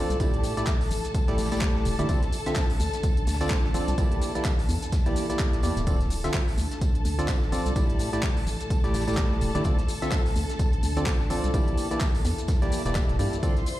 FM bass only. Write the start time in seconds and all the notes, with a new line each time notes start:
0.10 C2
0.91 A1
1.38 A1
1.85 E1
1.99 G1
2.80 D2
3.27 D2
3.74 A1
3.88 C2
4.69 E2
5.63 E2
5.77 D1
6.58 D2
7.05 D2
7.52 A1
7.66 C2
8.47 A1
8.94 A1
9.41 E1
9.55 G1
10.36 D2
10.83 D2
11.30 A1
11.44 C2
12.25 E2
12.86 E1
13.09 E1
13.19 G2